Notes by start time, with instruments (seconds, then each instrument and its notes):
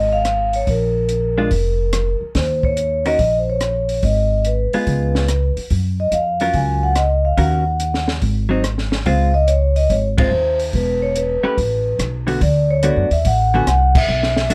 Already playing: upright bass G#1, vibraphone D#5
0.13 vibraphone F5
0.25 cross-stick, closed hi-hat
0.53 vibraphone C#5, open hi-hat
0.67 upright bass A#1, vibraphone A#4, kick, open hi-hat
1.09 closed hi-hat
1.38 hollow-body jazz guitar G#3 D4 F4
1.51 upright bass F1, kick, open hi-hat
1.93 cross-stick, closed hi-hat
2.21 muted upright bass stroke
2.35 upright bass D#2, vibraphone C5, kick, snare, open hi-hat
2.63 vibraphone C#5, kick
2.77 closed hi-hat
3.06 hollow-body jazz guitar D#3 C#4 F#4 A#4, vibraphone D#5, open hi-hat
3.19 upright bass A#1, kick, open hi-hat
3.39 vibraphone C5
3.50 vibraphone C#5
3.61 cross-stick, closed hi-hat
3.89 open hi-hat
4.03 upright bass G#1, vibraphone D#5, kick, open hi-hat
4.45 vibraphone B4, closed hi-hat
4.73 hollow-body jazz guitar G#3 B3 F4, muted upright bass stroke, open hi-hat
4.87 upright bass C#2, kick, open hi-hat
5.15 snare
5.28 cross-stick, closed hi-hat
5.57 muted upright bass stroke, open hi-hat
5.70 upright bass F#2, kick, open hi-hat
6.00 vibraphone D#5
6.12 upright bass F2, vibraphone F5, closed hi-hat
6.40 hollow-body jazz guitar F#3 C#4 F4 A#4, vibraphone F5, open hi-hat
6.53 upright bass C#2, vibraphone G#5, kick, open hi-hat
6.83 vibraphone F#5
6.96 vibraphone D#5, cross-stick, closed hi-hat
7.25 vibraphone F5
7.37 upright bass D#2, hollow-body jazz guitar D#3 C#4 F#4 A#4, vibraphone F#5, kick, open hi-hat
7.80 closed hi-hat
7.94 snare
8.08 snare
8.22 upright bass G#1, kick, open hi-hat
8.49 hollow-body jazz guitar F#3 C4 D#4
8.64 cross-stick, closed hi-hat
8.78 snare
8.92 snare
9.06 upright bass C#2, hollow-body jazz guitar G#3 C4 F4, vibraphone F5, kick, open hi-hat
9.34 vibraphone D#5
9.47 vibraphone C#5, closed hi-hat
9.76 vibraphone D#5, open hi-hat
9.90 upright bass G#1, vibraphone C#5, kick, open hi-hat
10.18 hollow-body jazz guitar G#3 C4 F4, vibraphone C5, kick, ride
10.31 upright bass D#2
10.60 open hi-hat
10.73 upright bass E1, vibraphone B4, kick, open hi-hat
11.02 vibraphone C#5
11.16 vibraphone B4, closed hi-hat
11.43 hollow-body jazz guitar A3 C#4 G4 B4, muted upright bass stroke
11.58 upright bass A1, kick, open hi-hat
11.99 upright bass B1, cross-stick, closed hi-hat
12.27 hollow-body jazz guitar D3 A3 B3 F#4, open hi-hat
12.41 upright bass D2, vibraphone D5, kick, open hi-hat
12.71 vibraphone C#5
12.83 hollow-body jazz guitar D3 A3 B3 F#4, vibraphone D5, closed hi-hat
12.96 upright bass F#2
13.10 upright bass D#2, vibraphone E5, open hi-hat
13.25 upright bass A1, vibraphone F#5, kick, open hi-hat
13.54 hollow-body jazz guitar D3 A3 B3 F#4, vibraphone G#5
13.67 upright bass C2, vibraphone F#5, cross-stick, closed hi-hat
13.95 vibraphone E5, kick, crash
14.08 upright bass B1
14.23 snare
14.37 snare
14.50 upright bass F2, hollow-body jazz guitar A3 D4, closed hi-hat